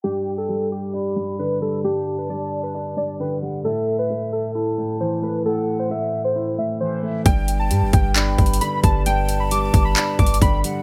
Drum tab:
HH |------------------------|------------------------|------------------------|------------------------|
CP |------------------------|------------------------|------------------------|------------------------|
BD |------------------------|------------------------|------------------------|------------------------|

HH |x--x--x--x--x--xxxx--x--|x--x--x--x--x--xxxx--x--|
CP |------------x-----------|------------x-----------|
BD |o--------o-----o-----o--|---------o-----o--o-----|